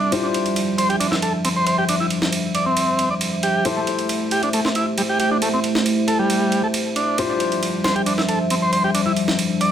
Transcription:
Already playing: G3 D4 E5
0.12 F3 D4 E4 F4 G4 C5, ride
0.23 D4
0.34 ride
0.46 ride
0.56 ride
0.78 C5, ride
0.89 G4, ride
1.00 D4, ride
1.11 E4, snare
1.22 A4, ride
1.45 C4, ride
1.56 C5
1.67 C5, ride
1.78 G4
1.89 D4, ride
2.00 E4
2.10 ride
2.22 snare
2.32 ride
2.55 D5, ride
2.66 C4
2.77 ride
2.99 ride
3.11 D5
3.21 ride
3.43 G4, ride
3.64 A3 E4 G4 A4 C5, ride
3.77 A3
3.87 ride
3.99 ride
4.09 ride
4.31 G4, ride
4.43 D4, ride
4.53 A3, ride
4.65 C4, snare
4.75 E4, ride
4.98 G3, ride
5.09 G4
5.20 G4, ride
5.31 D4
5.42 A3, ride
5.53 C4
5.64 ride
5.75 snare
5.86 ride
6.08 A4, ride
6.19 G3
6.30 ride
6.52 ride
6.64 A4
6.74 ride
6.96 D4, ride
7.18 F3 G3 D4 E4 F4 G4 C5 E5, ride
7.29 D4
7.40 ride
7.52 ride
7.63 ride
7.84 C5, snare, ride
7.95 G4, ride
8.06 D4, ride
8.18 E4, snare
8.28 A4, ride
8.50 C4, ride
8.62 C5
8.73 C5, ride
8.84 G4
8.94 D4, ride
9.06 E4
9.16 ride
9.28 snare
9.39 ride
9.61 D5, ride

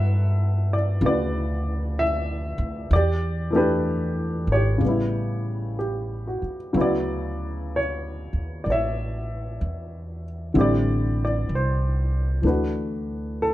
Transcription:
Already playing: G2 F#3 B3 E4 A4 B4 E5 F#5
0.73 D5
1.01 D2 C#3 F#4
1.05 B4 D5
1.99 E5
2.58 D2
2.91 E2 D5
2.96 G4
3.50 E3 A3
3.55 D4 G4 B4
4.47 G#1
4.52 G4 C#5
4.78 A1 C#3 G3
4.84 B3
4.89 E4
5.79 G4
6.27 F#4
6.42 muted upright bass stroke
6.73 D2 C#3 F#3 B3
6.77 E4 F#4
6.81 D5
7.76 C#5
8.33 D#2
8.64 A1 D5
8.70 C#5 E5
9.61 E2
10.54 A1 D3 G3 C4 E4
10.59 G4 D5
11.25 D5
11.49 C2
11.55 C5
12.42 D2 E3 A3 D4
12.47 F#4 B4
13.42 A4

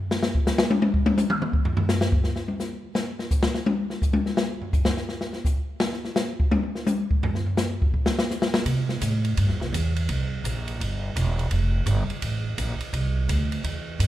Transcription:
0.11 snare
0.23 snare
0.35 kick
0.47 snare, hi-hat pedal
0.58 snare
0.70 high tom
0.82 high tom
0.94 kick
1.06 high tom
1.18 hi-hat pedal, high tom
1.30 mid tom
1.42 mid tom
1.53 kick
1.65 floor tom
1.77 floor tom
1.89 snare, hi-hat pedal
2.01 snare
2.12 kick
2.24 snare
2.36 snare
2.48 high tom
2.60 snare, hi-hat pedal
2.95 snare
3.19 snare
3.31 kick, hi-hat pedal
3.43 snare
3.55 snare
3.66 high tom
3.90 snare
4.02 kick, hi-hat pedal
4.13 high tom
4.26 snare
4.37 snare
4.62 floor tom
4.73 kick, hi-hat pedal
4.85 snare
4.97 snare
5.09 snare
5.21 snare
5.33 snare
5.45 kick, hi-hat pedal
5.80 snare
5.93 snare
6.05 snare
6.16 snare, hi-hat pedal
6.40 kick
6.51 high tom
6.63 high tom
6.75 snare
6.87 hi-hat pedal, high tom
7.11 kick
7.23 floor tom
7.35 snare
7.46 floor tom
7.57 snare, hi-hat pedal
7.82 kick
7.94 kick
8.06 snare
8.19 snare
8.31 snare, hi-hat pedal
8.42 snare
8.54 snare
8.66 C3, kick, ride
8.89 snare
9.01 A2, kick, hi-hat pedal, ride
9.25 ride
9.37 G2, kick, ride
9.48 E2, snare
9.60 C2, snare
9.73 E2, kick, hi-hat pedal, ride
9.96 ride
10.09 C2, kick, ride
10.44 A#1, kick, hi-hat pedal, ride
10.68 ride
10.80 G1, kick, ride
11.16 E1, kick, hi-hat pedal, ride
11.39 ride
11.51 F1, kick, ride
11.86 G1, kick, hi-hat pedal, ride
12.08 muted upright bass stroke, ride
12.22 A1, kick, ride
12.58 A#1, kick, hi-hat pedal, ride
12.80 muted upright bass stroke, ride
12.93 C2, kick, ride
13.29 D2, kick, hi-hat pedal, ride
13.52 ride
13.64 E2, kick, ride
13.99 G2, kick, hi-hat pedal, ride

